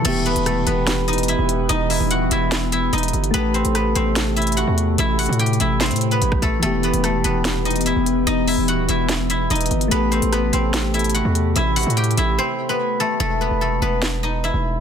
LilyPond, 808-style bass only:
\new Staff \with { instrumentName = "808-style bass" } { \clef bass \time 4/4 \key e \minor \tempo 4 = 146 e,,8. e,,8. e,,4.~ e,,16 e,,8. | e,,8. dis,,8. e,,4. e,,8 g,,8 | a,,8. a,,8. a,,4.~ a,,16 e,8. | a,,8. a,8. a,,8. a,8. a,,4 |
e,,8. e,,8. e,,4.~ e,,16 e,,8. | e,,8. dis,,8. e,,4. e,,8 g,,8 | a,,8. a,,8. a,,4.~ a,,16 e,8. | a,,8. a,8. a,,8 r2 |
e,,8. e,,8. e,,4.~ e,,16 e,,8. | }